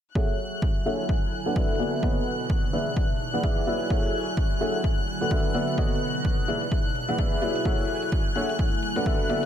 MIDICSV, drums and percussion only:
0, 0, Header, 1, 2, 480
1, 0, Start_track
1, 0, Key_signature, 3, "minor"
1, 0, Tempo, 468750
1, 158, Time_signature, 4, 2, 24, 8
1, 9683, End_track
2, 0, Start_track
2, 0, Title_t, "Drums"
2, 158, Note_on_c, 9, 36, 114
2, 260, Note_off_c, 9, 36, 0
2, 535, Note_on_c, 9, 42, 50
2, 637, Note_off_c, 9, 42, 0
2, 638, Note_on_c, 9, 36, 115
2, 740, Note_off_c, 9, 36, 0
2, 878, Note_on_c, 9, 42, 36
2, 980, Note_off_c, 9, 42, 0
2, 1015, Note_on_c, 9, 42, 51
2, 1117, Note_on_c, 9, 36, 115
2, 1118, Note_off_c, 9, 42, 0
2, 1220, Note_off_c, 9, 36, 0
2, 1358, Note_on_c, 9, 42, 37
2, 1460, Note_off_c, 9, 42, 0
2, 1495, Note_on_c, 9, 42, 53
2, 1597, Note_off_c, 9, 42, 0
2, 1598, Note_on_c, 9, 36, 108
2, 1700, Note_off_c, 9, 36, 0
2, 1837, Note_on_c, 9, 42, 62
2, 1939, Note_off_c, 9, 42, 0
2, 1975, Note_on_c, 9, 42, 52
2, 2077, Note_off_c, 9, 42, 0
2, 2078, Note_on_c, 9, 36, 112
2, 2180, Note_off_c, 9, 36, 0
2, 2455, Note_on_c, 9, 42, 50
2, 2557, Note_off_c, 9, 42, 0
2, 2558, Note_on_c, 9, 36, 120
2, 2660, Note_off_c, 9, 36, 0
2, 2798, Note_on_c, 9, 42, 35
2, 2900, Note_off_c, 9, 42, 0
2, 2935, Note_on_c, 9, 42, 52
2, 3037, Note_off_c, 9, 42, 0
2, 3038, Note_on_c, 9, 36, 117
2, 3140, Note_off_c, 9, 36, 0
2, 3278, Note_on_c, 9, 42, 36
2, 3380, Note_off_c, 9, 42, 0
2, 3415, Note_on_c, 9, 42, 51
2, 3517, Note_off_c, 9, 42, 0
2, 3518, Note_on_c, 9, 36, 113
2, 3620, Note_off_c, 9, 36, 0
2, 3758, Note_on_c, 9, 42, 64
2, 3860, Note_off_c, 9, 42, 0
2, 3895, Note_on_c, 9, 42, 52
2, 3998, Note_off_c, 9, 42, 0
2, 3998, Note_on_c, 9, 36, 117
2, 4100, Note_off_c, 9, 36, 0
2, 4375, Note_on_c, 9, 42, 48
2, 4478, Note_off_c, 9, 42, 0
2, 4478, Note_on_c, 9, 36, 117
2, 4580, Note_off_c, 9, 36, 0
2, 4718, Note_on_c, 9, 42, 33
2, 4820, Note_off_c, 9, 42, 0
2, 4855, Note_on_c, 9, 42, 47
2, 4957, Note_off_c, 9, 42, 0
2, 4958, Note_on_c, 9, 36, 119
2, 4958, Note_on_c, 9, 42, 63
2, 5060, Note_off_c, 9, 36, 0
2, 5060, Note_off_c, 9, 42, 0
2, 5198, Note_on_c, 9, 42, 35
2, 5300, Note_off_c, 9, 42, 0
2, 5335, Note_on_c, 9, 42, 49
2, 5437, Note_off_c, 9, 42, 0
2, 5438, Note_on_c, 9, 36, 121
2, 5540, Note_off_c, 9, 36, 0
2, 5677, Note_on_c, 9, 42, 62
2, 5780, Note_off_c, 9, 42, 0
2, 5815, Note_on_c, 9, 42, 46
2, 5917, Note_off_c, 9, 42, 0
2, 5917, Note_on_c, 9, 42, 62
2, 5918, Note_on_c, 9, 36, 118
2, 6020, Note_off_c, 9, 36, 0
2, 6020, Note_off_c, 9, 42, 0
2, 6295, Note_on_c, 9, 42, 48
2, 6397, Note_off_c, 9, 42, 0
2, 6398, Note_on_c, 9, 36, 115
2, 6398, Note_on_c, 9, 42, 61
2, 6500, Note_off_c, 9, 36, 0
2, 6500, Note_off_c, 9, 42, 0
2, 6638, Note_on_c, 9, 42, 33
2, 6740, Note_off_c, 9, 42, 0
2, 6775, Note_on_c, 9, 42, 46
2, 6878, Note_off_c, 9, 42, 0
2, 6878, Note_on_c, 9, 36, 120
2, 6878, Note_on_c, 9, 42, 60
2, 6980, Note_off_c, 9, 36, 0
2, 6980, Note_off_c, 9, 42, 0
2, 7118, Note_on_c, 9, 42, 34
2, 7221, Note_off_c, 9, 42, 0
2, 7256, Note_on_c, 9, 42, 46
2, 7358, Note_off_c, 9, 42, 0
2, 7358, Note_on_c, 9, 36, 116
2, 7358, Note_on_c, 9, 42, 55
2, 7460, Note_off_c, 9, 36, 0
2, 7460, Note_off_c, 9, 42, 0
2, 7598, Note_on_c, 9, 42, 61
2, 7700, Note_off_c, 9, 42, 0
2, 7736, Note_on_c, 9, 42, 48
2, 7838, Note_off_c, 9, 42, 0
2, 7838, Note_on_c, 9, 36, 112
2, 7838, Note_on_c, 9, 42, 63
2, 7940, Note_off_c, 9, 36, 0
2, 7941, Note_off_c, 9, 42, 0
2, 8216, Note_on_c, 9, 42, 46
2, 8318, Note_off_c, 9, 42, 0
2, 8318, Note_on_c, 9, 36, 112
2, 8318, Note_on_c, 9, 42, 61
2, 8420, Note_off_c, 9, 36, 0
2, 8421, Note_off_c, 9, 42, 0
2, 8558, Note_on_c, 9, 42, 33
2, 8661, Note_off_c, 9, 42, 0
2, 8696, Note_on_c, 9, 42, 48
2, 8798, Note_off_c, 9, 42, 0
2, 8798, Note_on_c, 9, 36, 118
2, 8798, Note_on_c, 9, 42, 58
2, 8900, Note_off_c, 9, 36, 0
2, 8901, Note_off_c, 9, 42, 0
2, 9039, Note_on_c, 9, 42, 33
2, 9141, Note_off_c, 9, 42, 0
2, 9176, Note_on_c, 9, 42, 51
2, 9278, Note_off_c, 9, 42, 0
2, 9278, Note_on_c, 9, 36, 112
2, 9278, Note_on_c, 9, 42, 58
2, 9380, Note_off_c, 9, 36, 0
2, 9381, Note_off_c, 9, 42, 0
2, 9518, Note_on_c, 9, 42, 60
2, 9621, Note_off_c, 9, 42, 0
2, 9683, End_track
0, 0, End_of_file